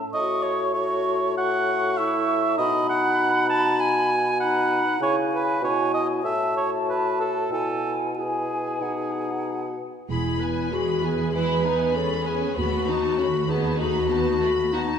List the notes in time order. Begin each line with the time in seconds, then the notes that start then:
Already playing: A5
0.11 A2 F#4 D#5 C#6
0.42 C#5
0.74 F#4 C#5 C#6
1.37 F#4 F#5 C#6
1.97 E4 E5
2.57 B2 D#4 D#5 B5
2.89 F#5
3.49 A5
3.80 G#5
4.39 D#4 F#5 B5
5.00 C#3 E4 C#5 G#5
5.34 B4
5.62 B2 E4 C#5 G#5
5.94 D#5
6.24 A2 F#4 E5 A5
6.57 C#5
6.89 B4
7.20 A4
7.50 B2 E4 A4 G#5
8.16 E4 G#4 G#5
8.81 B2 D#4 F#5
10.08 E1 E2 G#3 E4 G#4 B5
10.40 B3 B4 G#5
10.72 G#3 F#4 G#4 B5
11.01 B3 G#4 B4 G#5
11.33 G#3 E4 G#4 B4 B5
11.64 B3 D#4 B4 G#5
11.94 G#3 C#4 G#4 A4 B5
12.26 B3 G#4 B4 G#5
12.56 D#2 A3 B3 F#4 B5
12.87 B3 D#4 A5
13.17 A3 C#4 F#4 B5
13.48 B3 D#4 G#4 A5
13.77 A3 D#4 F#4 B5
14.08 B3 D#4 A5
14.40 A3 F#4 B5
14.73 B3 D#4 F#4 A5